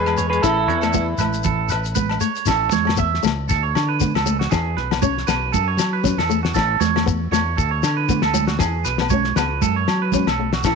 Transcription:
Already playing: fingered electric bass E2, alto saxophone G#3, clean electric guitar G#4 B4
0.06 cross-stick, low agogo
0.17 clean electric guitar C#5, muted nylon-string guitar stroke, closed hi-hat, shekere
0.30 alto saxophone G#3, clean electric guitar G#4 B4, closed hi-hat
0.42 fingered electric bass A1, alto saxophone E3, clean electric guitar E4 A4, nylon-string guitar E4, kick, cross-stick, closed hi-hat, muted conga, low agogo, shekere
0.68 fingered electric bass E2, clean electric guitar C#5, closed hi-hat, muted conga, low conga
0.81 nylon-string guitar A3, clean electric guitar A4, cross-stick, closed hi-hat, low agogo, shekere
0.93 nylon-string guitar B3, kick, closed hi-hat, high conga, shekere
1.18 fingered electric bass A1, clean electric guitar B4, cross-stick, closed hi-hat, high conga, low agogo, shekere
1.33 closed hi-hat, shekere
1.44 clean electric guitar A4, kick, closed hi-hat, muted conga, low conga, shekere
1.69 clean electric guitar B4, cross-stick, closed hi-hat, low agogo, shekere
1.84 closed hi-hat, shekere
1.95 nylon-string guitar B3, clean electric guitar B4, kick, closed hi-hat, muted conga, high conga, shekere
2.09 cross-stick, low agogo
2.21 nylon-string guitar A3, clean electric guitar C#5, closed hi-hat, shekere
2.35 closed hi-hat, shekere
2.46 fingered electric bass A1, nylon-string guitar E4, clean electric guitar A4, kick, snare, muted conga, low agogo, shekere
2.71 fingered electric bass E2, clean electric guitar C#5, snare, muted conga, high conga, shekere
2.85 nylon-string guitar A3, low agogo
2.89 snare
2.97 nylon-string guitar B3, clean electric guitar E5, kick, shekere
3.14 snare
3.23 fingered electric bass C#2, nylon-string guitar A3, snare, muted conga, low agogo, shekere
3.49 fingered electric bass D2, clean electric guitar A4, kick, snare, muted conga, shekere
3.63 clean electric guitar C#5
3.75 fingered electric bass D3, snare, low agogo
3.89 clean electric guitar B4
4.00 nylon-string guitar B3, kick, snare, high conga, shekere
4.14 fingered electric bass C#2, clean electric guitar A4, snare, low agogo
4.26 nylon-string guitar A3, high conga, shekere
4.39 clean electric guitar F#4, snare
4.51 fingered electric bass E2, nylon-string guitar E4, clean electric guitar G#4, kick, snare, low agogo, shekere
4.77 fingered electric bass B1, clean electric guitar B4, snare, muted conga
4.91 nylon-string guitar B3, snare, low agogo
5.02 nylon-string guitar C#4, clean electric guitar C#5, kick, high conga, shekere
5.18 snare
5.27 fingered electric bass B1, nylon-string guitar B3, clean electric guitar B4, snare, muted conga, low agogo, shekere
5.52 fingered electric bass F#2, clean electric guitar A4, kick, muted conga, high conga, shekere
5.68 clean electric guitar C#5
5.77 fingered electric bass F#3, snare, low agogo, shekere
5.93 clean electric guitar B4
6.04 nylon-string guitar C#4, kick, snare, high conga, low conga, shekere
6.17 fingered electric bass E2, clean electric guitar A4, snare, low agogo
6.29 nylon-string guitar A3, shekere
6.43 clean electric guitar F#4, snare
6.54 fingered electric bass A1, nylon-string guitar E4, clean electric guitar A4, kick, snare, muted conga, low agogo, shekere
6.80 fingered electric bass E2, clean electric guitar C#5, snare, muted conga, high conga, shekere
6.96 nylon-string guitar A3, snare, low agogo
7.06 nylon-string guitar B3, kick, shekere
7.31 fingered electric bass E2, nylon-string guitar A3, clean electric guitar C#5, snare, muted conga, low agogo, shekere
7.56 fingered electric bass D2, clean electric guitar A4, kick, muted conga, shekere
7.71 clean electric guitar C#5
7.83 fingered electric bass D3, snare, low agogo, shekere
7.97 clean electric guitar B4
8.08 nylon-string guitar B3, kick, snare, high conga, shekere
8.22 fingered electric bass D2, clean electric guitar A4, snare, low agogo
8.34 nylon-string guitar F#3, high conga, shekere
8.47 clean electric guitar F#4, snare
8.59 fingered electric bass E2, nylon-string guitar E4, clean electric guitar G#4, kick, snare, muted conga, low agogo, shekere
8.85 fingered electric bass B1, clean electric guitar B4, snare, muted conga, shekere
8.98 nylon-string guitar B3, snare, low agogo
9.10 nylon-string guitar C#4, clean electric guitar C#5, kick, high conga, shekere
9.24 snare
9.36 fingered electric bass C#2, nylon-string guitar B3, clean electric guitar B4, snare, low agogo, shekere
9.61 fingered electric bass F#2, clean electric guitar A4, kick, muted conga, high conga, shekere
9.76 clean electric guitar C#5
9.88 fingered electric bass F#3, snare, low agogo
10.02 clean electric guitar B4
10.12 nylon-string guitar C#4, kick, snare, high conga, low conga, shekere
10.27 fingered electric bass B1, clean electric guitar A4, snare, low agogo
10.39 nylon-string guitar A3
10.53 clean electric guitar F#4, snare
10.63 fingered electric bass A1, nylon-string guitar E4, clean electric guitar A4, kick, snare, muted conga, low agogo, shekere

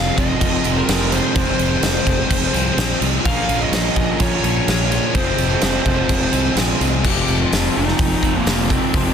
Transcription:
Already playing: distorted electric guitar F2 C3 F3, clean electric guitar F3 G#3, overdriven electric guitar G#3 C4, lead electric guitar F5
0.16 fingered electric bass F1, distorted electric guitar C3 F3, clean electric guitar C4, lead electric guitar D#5, kick, crash
0.40 fingered electric bass F1, distorted electric guitar F2 C3 F3, clean electric guitar F3, kick, tambourine, crash
0.64 fingered electric bass F1, overdriven electric guitar F2 G#3 C4, distorted electric guitar C3 F3, clean electric guitar C4, tambourine, crash
0.78 lead electric guitar A#4
0.88 fingered electric bass F1, distorted electric guitar F2 C3 F3, clean electric guitar G#3, overdriven electric guitar G#3 C4, snare, tambourine, crash
1.11 distorted electric guitar C3 F3, clean electric guitar F3, lead electric guitar C5, tambourine, crash
1.35 fingered electric bass F1, distorted electric guitar F2 C3 F3, clean electric guitar F3, overdriven electric guitar G#3 C4, lead electric guitar C5, kick, tambourine, crash
1.59 fingered electric bass F1, tambourine, crash
1.82 fingered electric bass F1, clean electric guitar G#3, snare, tambourine, crash
2.06 fingered electric bass F1, distorted electric guitar C3 F3, clean electric guitar C4, kick, crash
2.30 fingered electric bass F1, distorted electric guitar F2 C3 F3, clean electric guitar F3, kick, tambourine, crash
2.53 fingered electric bass C2, overdriven electric guitar F2 G#3 C4, distorted electric guitar C3 F3, clean electric guitar C4, tambourine, crash
2.77 fingered electric bass A#1, distorted electric guitar F2 C3 F3, clean electric guitar G#3, overdriven electric guitar G#3 C4, snare, tambourine, crash
3.01 fingered electric bass C2, distorted electric guitar C3 F3, clean electric guitar F3, tambourine, crash
3.25 fingered electric bass A#1, distorted electric guitar A#2 F3 A#3, clean electric guitar F3, overdriven electric guitar C#4, lead electric guitar F5, kick, tambourine, crash
3.49 fingered electric bass A#1, tambourine, crash
3.61 lead electric guitar D#5
3.72 fingered electric bass A#1, clean electric guitar A#3, snare, tambourine, crash
3.96 fingered electric bass A#1, distorted electric guitar F3 A#3, clean electric guitar C#4, kick, crash
4.19 fingered electric bass A#1, distorted electric guitar A#2 F3 A#3, clean electric guitar F3, lead electric guitar C#5, kick, tambourine, crash
4.43 fingered electric bass A#1, overdriven electric guitar A#2 C#4, distorted electric guitar F3 A#3, clean electric guitar C#4, tambourine, crash
4.67 fingered electric bass A#1, distorted electric guitar A#2 F3 A#3, clean electric guitar A#3, snare, tambourine, crash
4.71 overdriven electric guitar C#4
4.91 clean electric guitar F3, distorted electric guitar F3 A#3, tambourine, crash
5.15 fingered electric bass F1, distorted electric guitar F2 C3 F3, clean electric guitar G#3, overdriven electric guitar G#3 C4, lead electric guitar C5, kick, crash
5.38 fingered electric bass F1, tambourine, crash
5.61 fingered electric bass F1, clean electric guitar G#3, snare, tambourine, crash
5.85 fingered electric bass F1, distorted electric guitar C3 F3, clean electric guitar C4, kick, crash
6.09 fingered electric bass F1, distorted electric guitar F2 C3 F3, clean electric guitar G#3, kick, tambourine, crash
6.32 fingered electric bass C2, overdriven electric guitar F2 G#3 C4, distorted electric guitar C3 F3, clean electric guitar C4, tambourine, crash
6.56 fingered electric bass A#1, distorted electric guitar F2 C3 F3, clean electric guitar G#3, overdriven electric guitar G#3, snare, tambourine, crash
6.60 overdriven electric guitar C4
6.79 fingered electric bass C2, distorted electric guitar C3 F3, clean electric guitar G#3, tambourine, crash
7.03 fingered electric bass F1, distorted electric guitar F2 C3 F3, overdriven electric guitar G#3, lead electric guitar G4, kick, crash, tambourine
7.08 overdriven electric guitar C4
7.28 fingered electric bass F1, tambourine
7.41 lead electric guitar F4
7.52 fingered electric bass F1, snare, open hi-hat, tambourine
7.75 fingered electric bass F1, distorted electric guitar C3 F3, lead electric guitar D#4
7.88 snare
7.99 fingered electric bass F1, distorted electric guitar F2 C3 F3, kick, open hi-hat, tambourine
8.23 fingered electric bass F1, overdriven electric guitar F2 G#3 C4, distorted electric guitar C3 F3, kick, tambourine
8.36 lead electric guitar A#3
8.46 fingered electric bass F1, distorted electric guitar F2 C3 F3, overdriven electric guitar G#3, snare, open hi-hat, tambourine
8.50 overdriven electric guitar C4
8.70 distorted electric guitar C3 F3, lead electric guitar C4, kick, tambourine
8.93 fingered electric bass F1, distorted electric guitar F2 C3 F3, overdriven electric guitar G#3 C4, lead electric guitar C4, kick, open hi-hat, tambourine

